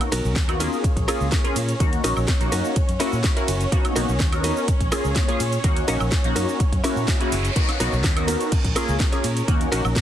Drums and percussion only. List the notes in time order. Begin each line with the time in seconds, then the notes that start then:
0.01 closed hi-hat, cabasa, high woodblock
0.12 open hi-hat, ride, cabasa
0.25 cabasa
0.36 kick, snare, closed hi-hat, ride, cabasa
0.49 closed hi-hat, cabasa, high woodblock
0.60 open hi-hat, ride, cabasa
0.73 cabasa
0.84 kick, closed hi-hat, ride, cabasa
0.97 kick, closed hi-hat, cabasa
1.08 open hi-hat, ride, cabasa, high woodblock
1.21 cabasa
1.32 kick, snare, closed hi-hat, ride, cabasa
1.45 closed hi-hat, cabasa
1.56 open hi-hat, ride, cabasa
1.69 closed hi-hat, cabasa
1.80 kick, closed hi-hat, ride, cabasa
1.93 closed hi-hat, cabasa
2.04 open hi-hat, ride, cabasa
2.17 cabasa, high woodblock
2.28 kick, snare, closed hi-hat, ride, cabasa
2.41 closed hi-hat, cabasa
2.52 open hi-hat, ride, cabasa
2.65 cabasa
2.76 kick, closed hi-hat, ride, cabasa
2.89 closed hi-hat, cabasa
3.00 open hi-hat, ride, cabasa
3.13 cabasa
3.24 kick, snare, closed hi-hat, ride, cabasa
3.37 closed hi-hat, cabasa
3.48 open hi-hat, ride, cabasa
3.61 closed hi-hat, cabasa
3.72 kick, closed hi-hat, ride, cabasa
3.85 closed hi-hat, cabasa, high woodblock
3.96 open hi-hat, ride, cabasa
4.09 cabasa
4.20 kick, snare, closed hi-hat, ride, cabasa
4.32 closed hi-hat, cabasa, high woodblock
4.44 open hi-hat, ride, cabasa
4.57 cabasa
4.68 kick, closed hi-hat, ride, cabasa
4.81 kick, closed hi-hat, cabasa
4.92 open hi-hat, ride, cabasa, high woodblock
5.05 cabasa
5.16 kick, snare, closed hi-hat, ride, cabasa
5.29 closed hi-hat, cabasa
5.40 open hi-hat, ride, cabasa
5.53 closed hi-hat, cabasa
5.64 kick, closed hi-hat, ride, cabasa
5.76 closed hi-hat, cabasa
5.88 open hi-hat, ride, cabasa
6.00 cabasa, high woodblock
6.12 kick, snare, closed hi-hat, ride, cabasa
6.24 closed hi-hat, cabasa
6.36 open hi-hat, ride, cabasa
6.49 cabasa
6.60 kick, closed hi-hat, ride, cabasa
6.72 kick, closed hi-hat, cabasa
6.84 open hi-hat, ride, cabasa
6.97 cabasa
7.08 kick, snare, closed hi-hat, ride, cabasa
7.21 closed hi-hat, cabasa
7.32 open hi-hat, ride, cabasa
7.45 closed hi-hat, cabasa
7.56 kick, closed hi-hat, ride, cabasa
7.68 snare, closed hi-hat, cabasa, high woodblock
7.80 open hi-hat, ride, cabasa
7.93 cabasa
8.04 kick, snare, closed hi-hat, ride, cabasa
8.17 closed hi-hat, cabasa, high woodblock
8.28 open hi-hat, ride, cabasa
8.41 closed hi-hat, cabasa
8.52 kick, closed hi-hat, ride, crash, cabasa
8.65 kick, closed hi-hat, cabasa
8.76 open hi-hat, ride, cabasa, high woodblock
8.89 cabasa
9.00 kick, snare, closed hi-hat, cabasa
9.13 closed hi-hat, cabasa
9.24 open hi-hat, ride, cabasa
9.37 closed hi-hat, cabasa
9.48 kick, closed hi-hat, ride, cabasa
9.61 closed hi-hat, cabasa
9.72 open hi-hat, ride, cabasa
9.85 cabasa, high woodblock
9.96 kick, snare, closed hi-hat, ride, cabasa